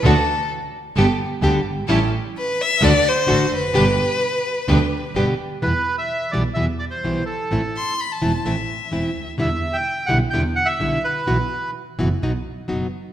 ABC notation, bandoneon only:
X:1
M:4/4
L:1/16
Q:1/4=128
K:G
V:1 name="Bandoneon"
z16 | z16 | z16 | [K:Em] B3 e3 d2 e2 d c3 A2- |
A4 z12 | e3 g3 f2 g2 f e3 B2- | B4 z12 |]